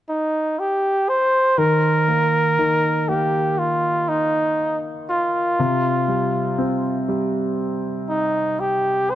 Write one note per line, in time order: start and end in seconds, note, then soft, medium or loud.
0.09 0.61 D#4 medium
0.59 1.11 G4 medium
1.09 1.60 C5 medium
1.58 2.57 D#3 medium
1.58 3.10 A#4 medium
2.08 3.07 A#3 soft
2.59 4.54 D#3 soft
3.08 5.04 A#3 soft
3.08 3.60 G4 medium
3.59 4.10 F4 medium
4.09 4.81 D#4 medium
5.09 7.04 F4 medium
5.59 9.15 C3 medium
6.08 7.07 G3 soft
6.58 8.54 C4 soft
7.09 9.04 G3 soft
8.09 8.62 D#4 medium
8.60 9.12 G4 medium
9.10 9.15 C5 medium